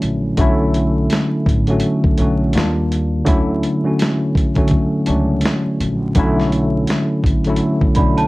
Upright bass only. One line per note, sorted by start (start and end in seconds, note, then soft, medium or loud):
0.02 0.36 A#1 medium
0.38 1.06 B1 medium
1.47 1.80 A1 medium
2.19 2.53 B1 medium
2.55 3.23 D#2 loud
3.27 3.61 D2 medium
4.57 4.71 D2 medium
5.08 5.42 C#2 medium
5.80 6.14 A#1 medium
6.16 6.84 B1 loud
7.24 7.58 A1 medium
7.97 8.28 B1 medium